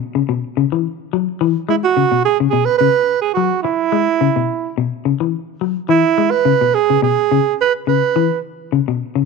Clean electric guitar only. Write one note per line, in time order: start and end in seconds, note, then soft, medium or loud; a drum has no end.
0.15 0.22 C#3 medium
0.29 0.43 B2 medium
0.57 0.65 C#3 medium
0.72 0.87 E3 medium
1.13 1.27 F#3 medium
1.41 1.55 E3 medium
1.69 1.83 G#3 medium
1.97 2.05 C#3 medium
2.12 2.26 B2 medium
2.40 2.47 C#3 medium
2.53 2.67 B2 medium
2.81 2.89 C#3 medium
3.37 3.51 F#3 medium
3.64 muted clean electric guitar stroke loud
3.92 4.07 G#3 medium
4.21 4.29 C#3 medium
4.36 4.51 B2 medium
4.78 4.92 B2 medium
5.05 5.13 C#3 medium
5.20 5.35 E3 medium
5.61 5.76 F#3 medium
5.89 6.04 E3 medium
6.18 6.32 G#3 medium
6.45 6.53 C#3 medium
6.61 6.76 B2 medium
6.90 6.97 C#3 medium
7.02 7.17 B2 medium
7.31 7.39 C#3 medium
7.87 8.02 C#3 medium
8.16 8.30 E3 medium
8.72 8.80 C#3 medium
8.88 9.02 B2 medium
9.15 9.22 C#3 medium